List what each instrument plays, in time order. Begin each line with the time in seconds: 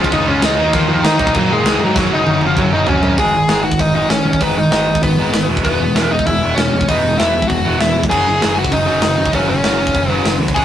Already playing: picked electric bass C#2, distorted electric guitar C#3 G#3 C#4, lead electric guitar F3
0.00 distorted electric guitar C#4 F4, lead electric guitar F4
0.04 kick
0.12 picked electric bass C#2, distorted electric guitar C#3 G#3 C#4 F4, lead electric guitar D#4 D#5, kick, crash
0.27 picked electric bass C#2, distorted electric guitar C#3 G#3 C#4 F4, lead electric guitar C#4 C#5
0.42 picked electric bass C#2, distorted electric guitar C#3 G#3 C#4 F4, lead electric guitar D#4 D#5, snare, crash
0.57 picked electric bass D#2, distorted electric guitar D#3 F#3 A#3 D#4
0.73 picked electric bass D#2, distorted electric guitar D#3 F#3 A#3 D#4, lead electric guitar F3 F4, kick, crash
0.87 picked electric bass D#2, distorted electric guitar D#3 F#3 A#3, lead electric guitar F3 F4
0.91 distorted electric guitar D#4
1.02 distorted electric guitar D#3 A#3 D#4, picked electric bass D#3, lead electric guitar D#4 D#5, snare, crash
1.06 distorted electric guitar D#3 F#3
1.18 picked electric bass A#1, distorted electric guitar D#3 F#3 A#3 D#4, lead electric guitar D#4 D#5, kick
1.27 kick
1.33 picked electric bass A#2, distorted electric guitar D#3 F#3 A#3 D#4, lead electric guitar F#3, kick, crash
1.37 lead electric guitar F#4
1.49 distorted electric guitar D#3 F#3 A#3 D#4, lead electric guitar G#3 G#4
1.63 picked electric bass C#2, distorted electric guitar D#3 F#3 A#3 D#4, snare, crash
1.79 picked electric bass G#2, distorted electric guitar D#3 F#3 A#3 D#4
1.84 lead electric guitar F#3 F#4
1.95 picked electric bass F#1, distorted electric guitar F#2 C#3 F#3 A#3 C#4, kick, snare
1.99 lead electric guitar F#3 F#4
2.10 picked electric bass F#1, distorted electric guitar F#2 C#3 F#3 A#3 C#4, lead electric guitar D#5
2.14 lead electric guitar D#4
2.26 picked electric bass F#1, distorted electric guitar F#2 C#3 F#3 A#3 C#4, high tom
2.40 picked electric bass F#1, distorted electric guitar F#2 C#3 F#3 A#3 C#4, high tom
2.46 lead electric guitar F3 F4
2.56 picked electric bass F#1, distorted electric guitar F#2 C#3 F#3 A#3 C#4, lead electric guitar F#3 F#4, kick, mid tom
2.71 picked electric bass F#1, distorted electric guitar F#2 C#3 F#3 A#3 C#4, lead electric guitar D#4 D#5
2.86 picked electric bass F#1, distorted electric guitar F#2 C#3 F#3 A#3 C#4, lead electric guitar C#4 C#5, floor tom
3.01 picked electric bass F#2, distorted electric guitar F#2 C#3 F#3 A#3 C#4, floor tom
3.18 picked electric bass G#1, distorted electric guitar G#2 D#3 G#3, lead electric guitar G#4 G#5, kick, open hi-hat
3.32 picked electric bass G#1, distorted electric guitar G#2 D#3
3.47 picked electric bass G#1, distorted electric guitar G#2 D#3 G#3, snare, open hi-hat
3.63 distorted electric guitar G#2 D#3, lead electric guitar F#4 F#5
3.72 kick
3.79 picked electric bass G#1, distorted electric guitar G#2 D#3, lead electric guitar D#4 D#5, kick, open hi-hat
3.93 picked electric bass G#1, distorted electric guitar G#2 D#3 G#3, lead electric guitar D#4 D#5
4.08 picked electric bass G#1, distorted electric guitar G#2 D#3, lead electric guitar C#4 C#5, snare, open hi-hat
4.24 picked electric bass G#1, distorted electric guitar G#2 D#3
4.33 kick
4.40 picked electric bass G#1, distorted electric guitar G#2 D#3 G#3, lead electric guitar B3 B4, kick, open hi-hat
4.56 picked electric bass G#1, distorted electric guitar G#2 D#3, lead electric guitar D#4 D#5
4.72 picked electric bass G#1, distorted electric guitar G#2 D#3 G#3, lead electric guitar D#4 D#5, snare, open hi-hat
4.88 distorted electric guitar G#2 D#3
4.95 kick
5.03 picked electric bass G#1, distorted electric guitar G#2 D#3, lead electric guitar B3 B4, kick, open hi-hat
5.17 picked electric bass G#1, distorted electric guitar G#2 D#3 G#3
5.32 picked electric bass G#1, distorted electric guitar G#2 D#3, snare, open hi-hat
5.47 picked electric bass E1, distorted electric guitar E2 B2 E3 G#3 B3
5.57 kick
5.63 picked electric bass E1, distorted electric guitar E2 B2 E3 G#3, lead electric guitar B3 B4, kick, open hi-hat
5.67 distorted electric guitar B3
5.78 picked electric bass E1, distorted electric guitar E2 B2 E3 G#3
5.94 picked electric bass E1, distorted electric guitar E2 B2 E3 G#3 B3, snare, open hi-hat
6.00 lead electric guitar A#4
6.11 distorted electric guitar E2 B2 E3 G#3, lead electric guitar D#4 D#5
6.19 kick
6.25 picked electric bass E1, distorted electric guitar E2 B2 E3 G#3, lead electric guitar E4 E5, kick, open hi-hat
6.41 picked electric bass E1, distorted electric guitar E2 B2 E3 G#3 B3
6.55 picked electric bass E1, distorted electric guitar E2 B2 E3 G#3, lead electric guitar C#4 C#5, snare, open hi-hat
6.71 picked electric bass E1, distorted electric guitar E2 B2 E3 G#3
6.81 kick
6.88 picked electric bass E1, distorted electric guitar E2 B2 E3 G#3 B3, lead electric guitar D#4 D#5, kick, open hi-hat
7.02 picked electric bass E1, distorted electric guitar E2 B2 E3 G#3
7.16 picked electric bass E1, distorted electric guitar E2 B2 E3 G#3, lead electric guitar E4 E5, snare, open hi-hat
7.20 distorted electric guitar B3
7.33 distorted electric guitar E2 B2 E3 G#3
7.42 kick
7.47 picked electric bass E1, distorted electric guitar E2 B2 E3, lead electric guitar F#4 F#5, kick, open hi-hat
7.52 distorted electric guitar G#3
7.64 picked electric bass E1, distorted electric guitar E2 B2 E3 G#3 B3
7.79 picked electric bass E1, distorted electric guitar E2 B2 E3 G#3, lead electric guitar E4 E5, snare, open hi-hat
7.94 picked electric bass E1, distorted electric guitar E2 B2 E3 G#3
8.03 kick
8.09 picked electric bass F#1, distorted electric guitar F#2 C#3 F#3, lead electric guitar G#4 G#5, kick, crash
8.25 picked electric bass F#1, distorted electric guitar F#2 C#3 F#3
8.41 picked electric bass F#1, distorted electric guitar F#2 C#3 F#3, snare, open hi-hat
8.57 distorted electric guitar F#2 C#3 F#3, lead electric guitar F#4 F#5
8.65 kick
8.72 picked electric bass F#1, distorted electric guitar F#2 C#3 F#3, lead electric guitar D#4 D#5, kick, open hi-hat
8.86 picked electric bass F#1, distorted electric guitar F#2 C#3 F#3, lead electric guitar D#4 D#5
9.02 picked electric bass F#1, distorted electric guitar F#2 C#3 F#3, snare, open hi-hat
9.17 picked electric bass F#1, distorted electric guitar F#2 C#3 F#3
9.26 kick
9.33 picked electric bass F#1, distorted electric guitar F#2 C#3 F#3, lead electric guitar C#4 C#5, kick, open hi-hat
9.48 picked electric bass F#1, distorted electric guitar F#2 C#3 F#3, lead electric guitar C#4 C#5
9.63 picked electric bass F#1, distorted electric guitar F#2 C#3 F#3, snare, open hi-hat
9.79 distorted electric guitar F#2 C#3 F#3
9.87 kick
9.95 picked electric bass F#1, distorted electric guitar F#2 C#3 F#3, kick, open hi-hat
10.08 picked electric bass F#1, distorted electric guitar F#2 C#3 F#3, lead electric guitar B4
10.23 picked electric bass F#1, distorted electric guitar F#2 C#3, snare, open hi-hat
10.27 distorted electric guitar F#3
10.40 picked electric bass D#2, distorted electric guitar F#2 C#3 F#3
10.48 kick
10.55 picked electric bass C#2, distorted electric guitar C#3 F3 G#3 C#4, lead electric guitar G#4 G#5, kick, open hi-hat